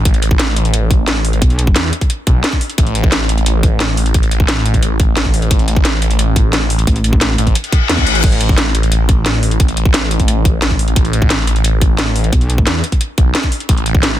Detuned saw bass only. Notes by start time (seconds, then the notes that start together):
0.05 A1
1.76 E2
2.27 B1
2.78 A1
4.14 A1
5.51 A1
7.38 A1
7.89 E2
8.07 A1
8.24 A1
9.60 A1
10.96 A1
12.67 E2
13.18 B1
13.69 A1